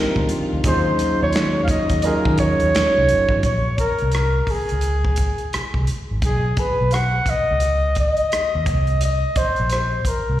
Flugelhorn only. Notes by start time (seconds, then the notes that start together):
Already playing: A#4
0.68 C5
1.23 C#5
1.64 F5
1.70 D#5
2.05 A#4
2.40 C#5
3.45 C#5
3.79 A#4
4.15 A#4
4.51 G#4
6.26 G#4
6.60 B4
6.94 F#5
7.30 D#5
7.99 D#5
9.04 D#5
9.37 C5
9.72 C5
10.08 A#4